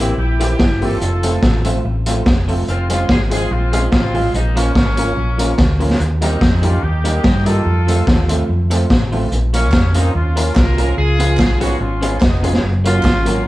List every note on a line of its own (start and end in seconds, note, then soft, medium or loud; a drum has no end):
0.00 0.12 A1 loud
0.00 0.12 E3 medium
0.00 0.13 A#3 medium
0.00 0.13 C4 medium
0.00 0.15 C4 medium
0.00 0.13 C4 medium
0.00 0.13 E4 medium
0.00 0.14 E4 loud
0.00 0.13 G4 loud
0.00 0.13 G4 medium
0.18 0.53 A#1 loud
0.18 0.50 E4 medium
0.18 0.49 G4 medium
0.18 muted clean electric guitar stroke soft
0.39 0.54 E3 medium
0.39 0.54 A#3 medium
0.39 0.54 C4 medium
0.39 0.54 E4 medium
0.39 0.55 G4 loud
0.39 0.55 G4 medium
0.39 closed hi-hat medium
0.51 0.80 E4 medium
0.51 0.80 G4 medium
0.59 0.95 G1 loud
0.59 0.64 E4 soft
0.59 0.64 G4 soft
0.59 kick loud
0.59 snare loud
0.81 0.95 E3 medium
0.81 0.96 A#3 medium
0.81 0.96 C4 medium
0.81 0.96 E4 medium
0.81 1.66 F4 medium
0.81 0.96 G4 loud
0.81 0.96 G4 medium
0.81 1.65 A4 medium
0.81 open hi-hat medium
1.01 1.37 F1 loud
1.01 hi-hat pedal medium
1.23 1.37 F3 medium
1.23 1.37 A3 medium
1.23 1.37 A3 loud
1.23 1.38 C4 medium
1.23 1.38 C4 loud
1.23 1.38 F4 medium
1.23 1.38 A4 loud
1.23 closed hi-hat medium
1.42 1.78 A1 medium
1.42 kick loud
1.42 snare loud
1.65 1.78 F3 loud
1.65 1.79 A3 loud
1.65 1.79 A3 medium
1.65 1.79 C4 medium
1.65 1.79 C4 loud
1.65 1.79 F4 medium
1.65 1.79 F4 loud
1.65 1.80 A4 medium
1.65 closed hi-hat medium
1.85 2.20 A1 medium
1.85 muted clean electric guitar stroke soft
2.06 2.20 F3 medium
2.06 2.21 A3 loud
2.06 2.20 A3 medium
2.06 2.21 C4 medium
2.06 2.21 C4 loud
2.06 2.21 F4 medium
2.06 2.21 A4 loud
2.06 closed hi-hat medium
2.26 2.61 F1 loud
2.26 kick loud
2.26 snare loud
2.48 2.62 F3 medium
2.48 2.62 A3 medium
2.48 2.62 C4 medium
2.48 2.62 F4 medium
2.48 2.63 A4 loud
2.48 open hi-hat medium
2.68 3.03 F1 loud
2.68 2.89 C4 medium
2.68 2.89 F4 loud
2.68 hi-hat pedal medium
2.89 3.03 F3 medium
2.89 3.04 G#3 loud
2.89 3.04 G#3 medium
2.89 3.04 C4 medium
2.89 3.08 C#4 medium
2.89 3.04 F4 medium
2.89 3.08 F4 loud
2.89 3.04 F4 loud
2.89 3.04 G#4 loud
2.89 closed hi-hat medium
3.09 3.44 G#1 loud
3.09 3.20 F4 medium
3.09 3.20 G#4 medium
3.09 kick loud
3.09 snare loud
3.30 3.45 F3 medium
3.30 3.45 G#3 loud
3.30 3.45 G#3 medium
3.30 3.45 C4 medium
3.30 3.46 C4 medium
3.30 3.45 F4 medium
3.30 3.50 F4 medium
3.30 3.46 F4 medium
3.30 3.46 G#4 loud
3.30 3.50 G#4 loud
3.30 closed hi-hat loud
3.51 3.86 A#1 medium
3.51 3.73 C4 medium
3.51 3.73 F4 medium
3.51 muted clean electric guitar stroke soft
3.72 3.86 F3 medium
3.72 3.87 G#3 medium
3.72 3.87 C4 medium
3.72 3.83 C#4 medium
3.72 3.87 F4 medium
3.72 3.83 F4 loud
3.72 3.87 F4 medium
3.72 3.87 G#4 loud
3.72 closed hi-hat medium
3.92 4.28 A1 medium
3.92 4.32 C4 medium
3.92 3.97 F4 soft
3.92 4.31 F4 loud
3.92 3.97 G#4 soft
3.92 kick loud
3.92 snare loud
4.14 4.28 F3 medium
4.14 4.28 G#3 medium
4.14 4.28 C4 medium
4.14 4.29 F4 medium
4.14 4.29 G#4 loud
4.14 open hi-hat soft
4.34 4.69 A#1 loud
4.34 4.55 A#3 medium
4.34 4.55 D#4 medium
4.34 hi-hat pedal medium
4.55 4.69 F3 medium
4.55 4.70 A#3 medium
4.55 5.81 A#3 medium
4.55 4.70 C#4 medium
4.55 5.81 C#4 loud
4.55 4.70 C#4 medium
4.55 4.70 F4 medium
4.55 4.70 F4 loud
4.55 4.70 A#4 loud
4.55 closed hi-hat medium
4.75 5.11 G#1 medium
4.75 kick loud
4.75 snare loud
4.97 5.11 F3 medium
4.97 5.11 A#3 loud
4.97 5.11 A#3 medium
4.97 5.12 C#4 medium
4.97 5.11 C#4 medium
4.97 5.12 F4 medium
4.97 5.12 F4 loud
4.97 5.12 A#4 loud
4.97 closed hi-hat medium
5.17 5.52 A#1 medium
5.17 muted clean electric guitar stroke soft
5.38 5.52 F3 medium
5.38 5.53 A#3 medium
5.38 5.52 A#3 medium
5.38 5.53 C#4 medium
5.38 5.53 F4 medium
5.38 5.53 A#4 loud
5.38 closed hi-hat medium
5.58 5.94 D2 loud
5.58 kick loud
5.58 snare loud
5.80 5.94 F3 medium
5.80 5.94 A#3 medium
5.80 5.94 C#4 medium
5.80 5.95 F4 medium
5.80 5.95 A#4 medium
5.80 open hi-hat medium
5.90 snare medium
6.00 6.35 D#2 loud
6.00 hi-hat pedal medium
6.21 6.35 G3 loud
6.21 6.36 A#3 medium
6.21 6.36 A#3 loud
6.21 6.61 C4 medium
6.21 6.36 D#4 medium
6.21 6.61 D#4 medium
6.21 6.36 D#4 loud
6.21 6.36 G4 medium
6.21 6.36 A#4 loud
6.21 closed hi-hat medium
6.41 6.77 F2 loud
6.41 kick loud
6.41 snare loud
6.62 6.76 G3 loud
6.62 6.77 A#3 loud
6.62 6.77 A#3 medium
6.62 6.84 C#4 medium
6.62 6.77 D#4 medium
6.62 6.83 F4 loud
6.62 6.78 G4 medium
6.62 6.77 G4 loud
6.62 6.78 A#4 loud
6.62 closed hi-hat medium
6.83 7.18 D#2 medium
6.83 7.14 D#4 medium
6.83 7.13 G4 medium
6.83 muted clean electric guitar stroke soft
7.04 7.18 G3 medium
7.04 7.19 A#3 loud
7.04 7.18 A#3 medium
7.04 7.19 D#4 medium
7.04 7.19 G4 medium
7.04 7.19 A#4 loud
7.04 closed hi-hat medium
7.14 7.44 D#4 medium
7.14 7.44 G4 medium
7.24 7.60 G2 medium
7.24 7.28 G4 soft
7.24 7.28 A#4 soft
7.24 kick loud
7.24 snare loud
7.45 7.60 G3 medium
7.45 7.60 A#3 loud
7.45 7.60 A#3 medium
7.45 7.60 D#4 medium
7.45 7.60 D#4 loud
7.45 8.30 F4 medium
7.45 7.60 G4 medium
7.45 7.61 G4 medium
7.45 8.29 A4 loud
7.45 7.61 A#4 loud
7.45 closed hi-hat medium
7.66 8.01 F2 loud
7.87 8.01 F3 medium
7.87 8.01 A3 loud
7.87 8.02 A3 medium
7.87 8.02 C4 medium
7.87 8.02 F4 medium
7.87 8.02 A4 loud
7.87 closed hi-hat medium
8.07 8.43 D#2 loud
8.07 kick loud
8.07 snare loud
8.28 8.43 F3 medium
8.28 8.43 A3 loud
8.28 8.43 C4 medium
8.28 8.43 F4 medium
8.28 8.44 F4 medium
8.28 8.44 A4 loud
8.28 closed hi-hat loud
8.48 8.84 F2 medium
8.48 muted clean electric guitar stroke soft
8.70 8.84 F3 medium
8.70 8.85 A3 medium
8.70 8.85 C4 medium
8.70 8.85 F4 medium
8.70 8.85 A4 loud
8.70 closed hi-hat medium
8.90 9.25 A1 loud
8.90 kick loud
8.90 snare loud
9.11 9.26 F3 medium
9.11 9.26 A3 medium
9.11 9.26 C4 medium
9.11 9.27 F4 medium
9.11 9.27 A4 loud
9.11 open hi-hat soft
9.31 9.73 A#1 loud
9.31 hi-hat pedal medium
9.53 9.67 F3 medium
9.53 9.68 A#3 medium
9.53 9.67 A#3 medium
9.53 9.93 A#3 medium
9.53 9.68 C#4 medium
9.53 9.92 C#4 loud
9.53 9.68 C#4 loud
9.53 9.68 F4 medium
9.53 9.68 A#4 medium
9.53 closed hi-hat medium
9.72 10.08 F2 loud
9.72 kick loud
9.72 snare loud
9.72 clap loud
9.94 10.09 F3 medium
9.94 10.09 A#3 medium
9.94 10.15 C4 medium
9.94 10.09 C#4 medium
9.94 10.15 D#4 loud
9.94 10.10 F4 medium
9.94 10.10 A#4 loud
9.94 closed hi-hat medium
10.14 10.50 D#2 medium
10.14 10.53 C#4 medium
10.14 10.53 F4 medium
10.14 muted clean electric guitar stroke soft
10.35 10.50 F3 medium
10.35 10.50 A#3 medium
10.35 10.50 C#4 medium
10.35 10.51 C#4 medium
10.35 10.50 F4 medium
10.35 10.51 F4 medium
10.35 10.51 A#4 loud
10.35 closed hi-hat medium
10.56 10.91 C2 medium
10.56 10.60 F4 soft
10.56 10.97 F4 medium
10.56 10.60 A#4 soft
10.56 10.97 A#4 loud
10.56 kick loud
10.56 snare loud
10.56 clap medium
10.77 10.91 F3 medium
10.77 10.92 A#3 medium
10.77 10.92 C#4 medium
10.77 10.92 F4 medium
10.77 10.92 A#4 loud
10.77 closed hi-hat medium
10.97 11.39 C#2 loud
10.97 11.57 F4 medium
10.97 11.57 G#4 loud
11.19 11.33 F3 medium
11.19 11.33 B3 medium
11.19 11.34 C#4 medium
11.19 11.34 F4 medium
11.19 11.34 G#4 medium
11.19 closed hi-hat medium
11.37 11.74 B1 loud
11.37 kick loud
11.37 snare loud
11.37 clap loud
11.60 11.74 F3 medium
11.60 11.75 B3 loud
11.60 11.74 B3 medium
11.60 11.75 C#4 medium
11.60 11.79 D#4 medium
11.60 11.75 F4 medium
11.60 11.79 F#4 medium
11.60 11.75 G#4 loud
11.60 closed hi-hat medium
11.80 12.16 G#1 medium
11.80 12.22 C#4 medium
11.80 12.22 F4 medium
11.80 muted clean electric guitar stroke soft
12.01 12.15 F3 medium
12.01 12.16 B3 medium
12.01 12.16 C#4 medium
12.01 12.16 C#4 loud
12.01 12.17 F4 medium
12.01 12.16 F4 loud
12.01 12.17 G#4 loud
12.01 closed hi-hat medium
12.21 12.57 F1 loud
12.21 12.54 B3 medium
12.21 12.54 D#4 medium
12.21 kick loud
12.21 snare loud
12.21 clap medium
12.43 12.57 F3 medium
12.43 12.58 B3 medium
12.43 12.57 B3 loud
12.43 12.58 C#4 medium
12.43 12.58 F4 medium
12.43 12.58 F4 loud
12.43 12.58 G#4 loud
12.43 closed hi-hat medium
12.53 snare medium
12.63 12.98 F#1 loud
12.84 12.98 F#3 medium
12.84 12.99 A#3 loud
12.84 12.99 A#3 medium
12.84 12.99 C#4 medium
12.84 13.42 C#4 medium
12.84 13.42 F4 loud
12.84 12.99 F#4 medium
12.84 13.00 A#4 loud
12.84 closed hi-hat medium
13.03 13.40 G#1 loud
13.03 kick loud
13.03 snare loud
13.03 clap loud
13.25 13.40 F#3 medium
13.25 13.40 A#3 loud
13.25 13.40 C#4 loud
13.25 13.41 C#4 medium
13.25 13.41 F#4 medium
13.25 13.41 A#4 loud
13.25 closed hi-hat loud